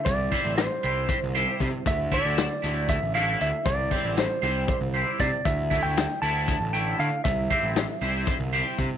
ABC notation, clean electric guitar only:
X:1
M:7/8
L:1/8
Q:1/4=117
K:Cmix
V:1 name="Clean electric guitar"
z [CEGc] z [CEGc] z [CEGc] z | z [A,,D,A,E] z [A,,D,A,E] z [A,,D,A,E] z | z [CEGc] z [CEGc] z [CEGc] z | z [A,,D,A,E] z [A,,D,A,E] z [A,,D,A,E] z |
z [CEGc] z [CEGc] z [CEGc] z |]